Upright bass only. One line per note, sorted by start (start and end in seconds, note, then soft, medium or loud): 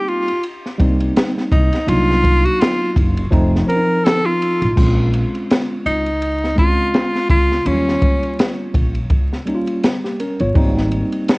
0.80 1.08 C2 medium
1.52 1.68 C2 loud
1.88 2.44 C2 loud
2.96 3.24 F#1 loud
3.32 3.60 F1 loud
4.62 4.74 A1 medium
4.77 5.21 A#1 loud
5.86 6.90 C#2 medium
7.30 7.58 C#2 loud
7.66 7.94 D#2 medium
8.02 8.18 C#2 medium
8.75 9.03 A#1 medium
9.10 9.38 C#2 medium
10.40 10.52 G1 medium
10.55 11.00 G#1 loud